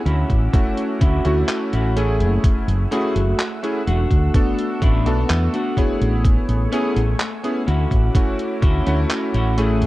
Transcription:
0.00 9.87 E6 medium
0.05 0.23 D2 medium
0.05 0.82 C#4 medium
0.05 1.95 C#4 medium
0.05 0.82 E4 medium
0.05 0.82 F#4 loud
0.05 6.21 F#5 medium
0.05 1.95 D6 medium
0.05 closed hi-hat soft
0.30 0.47 A1 medium
0.30 kick medium
0.30 closed hi-hat soft
0.53 1.19 A3 medium
0.53 1.19 C#4 medium
0.53 1.20 E4 medium
0.53 1.20 F#4 medium
0.53 kick loud
0.53 closed hi-hat medium
0.77 closed hi-hat soft
1.01 1.18 D2 medium
1.01 1.37 C#4 loud
1.01 1.37 E4 loud
1.01 1.37 F#4 loud
1.01 kick loud
1.01 closed hi-hat medium
1.25 1.42 D2 loud
1.25 1.90 A3 medium
1.25 1.91 C#4 medium
1.25 1.91 E4 medium
1.25 1.91 F#4 medium
1.25 closed hi-hat soft
1.49 clap loud
1.49 closed hi-hat medium
1.73 2.22 A1 medium
1.73 1.96 C#4 medium
1.73 1.96 E4 medium
1.73 1.97 F#4 medium
1.73 closed hi-hat soft
1.96 2.86 A3 medium
1.96 2.73 A3 medium
1.96 6.21 A3 medium
1.96 2.86 C#4 medium
1.96 2.73 E4 medium
1.96 2.86 E4 medium
1.96 2.86 G#4 medium
1.96 2.73 G#4 loud
1.96 3.85 G#5 medium
1.96 closed hi-hat medium
2.20 2.37 F#1 loud
2.20 closed hi-hat soft
2.44 kick loud
2.44 closed hi-hat medium
2.68 2.85 F#1 medium
2.68 closed hi-hat soft
2.91 3.18 A3 medium
2.91 3.39 A3 loud
2.91 3.18 C#4 medium
2.91 3.39 E4 loud
2.91 3.18 E4 medium
2.91 3.40 F#4 loud
2.91 3.18 G#4 loud
2.91 closed hi-hat medium
3.16 3.33 F#1 medium
3.16 closed hi-hat soft
3.40 clap loud
3.40 closed hi-hat medium
3.63 3.79 A3 medium
3.63 3.79 C#4 medium
3.63 3.80 E4 medium
3.63 3.80 G#4 medium
3.63 closed hi-hat soft
3.87 4.04 E1 medium
3.87 4.63 A3 medium
3.87 4.63 D4 medium
3.87 4.64 F#4 loud
3.87 closed hi-hat soft
4.11 4.28 D2 medium
4.11 kick medium
4.11 closed hi-hat soft
4.34 5.00 B3 medium
4.34 5.00 D4 medium
4.34 5.01 F#4 medium
4.34 5.01 A4 medium
4.34 kick loud
4.34 closed hi-hat medium
4.59 closed hi-hat soft
4.82 5.06 A1 loud
4.82 5.18 A3 loud
4.82 5.18 D4 loud
4.82 5.18 E4 loud
4.82 kick loud
4.82 closed hi-hat medium
5.06 5.23 B1 medium
5.06 5.71 B3 medium
5.06 5.72 D4 medium
5.06 5.72 F#4 medium
5.06 5.72 A4 medium
5.06 closed hi-hat soft
5.30 5.47 E2 loud
5.30 clap loud
5.30 closed hi-hat loud
5.53 6.13 A3 medium
5.53 6.13 D4 medium
5.53 6.14 F#4 medium
5.53 closed hi-hat soft
5.77 6.67 B3 medium
5.77 6.67 E4 medium
5.77 6.67 G#4 medium
5.77 6.67 C#5 medium
5.77 kick medium
5.77 closed hi-hat medium
6.01 6.35 A1 loud
6.01 closed hi-hat soft
6.25 7.66 A3 medium
6.25 7.66 G#5 medium
6.25 7.66 C#6 medium
6.25 kick loud
6.25 closed hi-hat medium
6.49 6.66 A1 medium
6.49 closed hi-hat soft
6.72 7.20 A3 loud
6.72 6.98 B3 medium
6.72 6.99 C#4 medium
6.72 7.20 C#4 loud
6.72 6.99 E4 medium
6.72 7.20 G#4 loud
6.72 6.99 G#4 loud
6.72 closed hi-hat medium
6.96 7.13 A1 medium
6.96 closed hi-hat soft
7.20 clap loud
7.20 closed hi-hat medium
7.43 7.60 B3 medium
7.43 7.60 C#4 medium
7.43 7.61 E4 medium
7.43 7.61 G#4 medium
7.43 closed hi-hat soft
7.67 7.85 D2 medium
7.67 8.43 C#4 medium
7.67 9.56 C#4 medium
7.67 8.44 E4 medium
7.67 8.44 F#4 loud
7.67 9.87 F#5 medium
7.67 9.56 D6 medium
7.67 closed hi-hat soft
7.91 8.08 A1 medium
7.91 kick medium
7.91 closed hi-hat soft
8.15 8.81 A3 medium
8.15 8.81 C#4 medium
8.15 8.81 E4 medium
8.15 8.82 F#4 medium
8.15 kick loud
8.15 closed hi-hat medium
8.39 closed hi-hat soft
8.62 8.80 D2 medium
8.62 8.98 C#4 loud
8.62 8.99 E4 loud
8.62 8.99 F#4 loud
8.62 kick loud
8.62 closed hi-hat medium
8.86 9.04 D2 loud
8.86 9.52 A3 medium
8.86 9.52 C#4 medium
8.86 9.53 E4 medium
8.86 9.53 F#4 loud
8.86 closed hi-hat soft
9.10 clap loud
9.10 closed hi-hat medium
9.34 9.83 A1 medium
9.34 9.58 C#4 medium
9.34 9.57 E4 medium
9.34 9.58 F#4 medium
9.34 closed hi-hat soft
9.57 9.87 A3 medium
9.57 9.87 C#4 medium
9.57 9.87 E4 medium
9.57 9.87 G#4 medium
9.57 9.87 G#4 loud
9.57 9.87 G#5 medium
9.57 closed hi-hat medium
9.82 9.87 F#1 loud
9.82 closed hi-hat soft

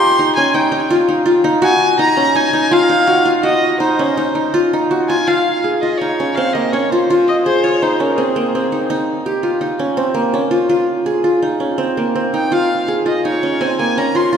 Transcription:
0.00 0.11 C#4 medium
0.00 0.19 D#4 medium
0.00 0.81 F4 medium
0.00 1.08 G4 medium
0.00 0.32 C6 loud
0.19 0.54 D#4 medium
0.36 1.92 C#4 medium
0.36 0.56 G#5 medium
0.54 0.71 D#4 medium
0.54 0.91 G5 medium
0.72 1.08 D#4 medium
0.90 1.25 F4 medium
1.09 1.44 D#4 medium
1.26 1.68 F4 medium
1.44 1.99 D#4 medium
1.62 2.77 F#4 medium
1.62 1.97 G#5 loud
1.99 2.35 D#4 medium
1.99 2.37 A#5 loud
2.17 3.71 C#4 medium
2.35 2.53 D#4 medium
2.35 2.74 G#5 medium
2.53 2.89 D#4 medium
2.71 3.13 F4 medium
2.71 3.27 F5 loud
2.89 3.80 D#4 medium
3.07 3.31 F#4 medium
3.25 3.49 F4 medium
3.43 4.60 F#4 medium
3.43 3.77 D#5 medium
3.80 4.17 D#4 medium
3.80 4.50 C5 medium
3.99 5.54 C#4 medium
4.17 4.35 D#4 medium
4.35 4.73 D#4 medium
4.54 4.97 F4 medium
4.73 6.01 D#4 medium
4.91 5.16 F#4 medium
5.09 5.27 F4 medium
5.09 5.29 G#5 medium
5.28 5.82 F4 medium
5.28 5.64 F5 medium
5.64 6.85 G#4 medium
5.81 6.92 F4 medium
5.81 5.99 D#5 medium
5.98 7.46 D#4 medium
5.98 6.37 C#5 medium
6.20 6.43 C#4 medium
6.35 6.79 C4 medium
6.35 6.54 F5 medium
6.53 8.26 A#3 medium
6.53 6.74 D#5 medium
6.72 8.00 C#4 medium
6.72 6.91 C#5 medium
6.90 7.10 F4 medium
6.90 7.63 C5 medium
7.10 7.63 F4 medium
7.28 7.36 D#5 medium
7.45 8.67 G#4 medium
7.45 7.65 C5 medium
7.63 8.98 F4 medium
7.63 7.83 C#5 medium
7.82 8.72 D#4 medium
7.82 8.02 C5 medium
8.00 8.24 C#4 medium
8.00 8.18 A#4 medium
8.16 8.55 C4 medium
8.16 8.89 G#4 medium
8.36 10.07 A#3 medium
8.55 9.85 C4 medium
8.72 8.90 D#4 medium
8.90 9.61 D#4 medium
9.26 10.52 G4 medium
9.43 10.51 F4 medium
9.61 11.05 D#4 medium
9.79 10.03 C#4 medium
9.97 10.40 C4 medium
10.14 11.86 A#3 medium
10.34 11.60 C#4 medium
10.51 10.69 F4 medium
10.69 11.24 F4 medium
11.06 12.27 G#4 medium
11.24 12.51 F4 medium
11.42 12.33 D#4 medium
11.60 11.84 C#4 medium
11.78 12.15 C4 medium
11.97 13.69 A#3 medium
12.15 13.49 C4 medium
12.34 13.25 D#4 medium
12.34 12.54 G5 medium
12.52 13.05 F4 medium
12.52 12.89 F5 medium
12.88 14.09 G#4 medium
13.06 14.15 F4 medium
13.06 13.24 D#5 medium
13.25 14.37 D#4 medium
13.25 13.62 C#5 medium
13.43 13.67 C#4 medium
13.61 14.04 C4 medium
13.61 13.78 G#5 medium
13.79 14.37 A#3 medium
13.79 13.99 G#5 medium
13.98 14.37 C#4 medium
13.98 14.18 A#5 medium
14.15 14.32 F4 medium
14.15 14.37 C6 medium
14.33 14.37 F4 medium

